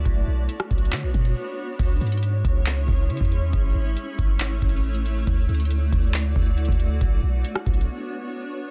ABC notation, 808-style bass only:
X:1
M:4/4
L:1/16
Q:1/4=138
K:C#phr
V:1 name="808-style bass" clef=bass
B,,,2 B,,,2 z2 B,,,2 D, B,,, B,,2 z4 | C,,2 G,,4 C,,4 C,,2 C, E,,3 | A,,,2 G,,,2 z2 G,,,4 A,,,6 | D,,2 D,,4 D,,4 D,,3 D,,3 |
B,,,2 B,,,2 z2 B,,,2 z8 |]